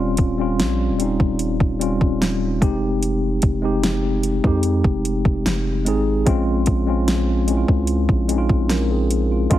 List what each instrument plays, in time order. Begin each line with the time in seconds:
Already playing: 808-style bass D#1, tine electric piano G3 C4 C#4 F4
0.17 808-style bass D#1, kick, closed hi-hat
0.38 tine electric piano G3 C4 C#4 F4
0.59 808-style bass A#1, snare, closed hi-hat
0.90 808-style bass D#1
0.98 tine electric piano G3 C4 C#4 D#4, closed hi-hat
1.20 808-style bass D#1, kick
1.39 closed hi-hat
1.60 808-style bass D#1, kick
1.79 tine electric piano G3 C4 C#4 F4, closed hi-hat
2.01 808-style bass D#1, kick
2.22 snare, closed hi-hat
2.61 808-style bass F1, tine electric piano G#3 C4 D#4 G4, kick, closed hi-hat
3.03 closed hi-hat
3.42 808-style bass F1, kick, closed hi-hat
3.62 tine electric piano G#3 C4 D#4 G4
3.83 snare, closed hi-hat
4.23 closed hi-hat
4.43 808-style bass F2, tine electric piano G#3 C4 D#4 G4, kick
4.63 closed hi-hat
4.84 808-style bass F1, kick
5.05 closed hi-hat
5.25 808-style bass F1, kick
5.46 808-style bass F1, snare, closed hi-hat
5.85 808-style bass G#1, tine electric piano G#3 C4 D#4 G#4, closed hi-hat
6.26 808-style bass A#1, tine electric piano G#3 C4 C#4 F4, kick, closed hi-hat
6.66 808-style bass A#1, kick, closed hi-hat
6.86 tine electric piano G#3 C4 C#4 F4
7.08 snare, closed hi-hat
7.47 tine electric piano G#3 C4 C#4 E4, closed hi-hat
7.57 tine electric piano F4
7.68 808-style bass C#2, kick
7.87 closed hi-hat
8.09 808-style bass A#1, kick
8.28 tine electric piano G#3 C4 C#4 D#4, closed hi-hat
8.38 tine electric piano F4
8.49 808-style bass A#1, kick
8.70 tine electric piano C#4 A#4, snare, closed hi-hat
8.91 tine electric piano C4 G#4
9.11 closed hi-hat
9.31 tine electric piano G#3 F4
9.50 808-style bass A#1, tine electric piano G#3 C4 D4 F4, kick, closed hi-hat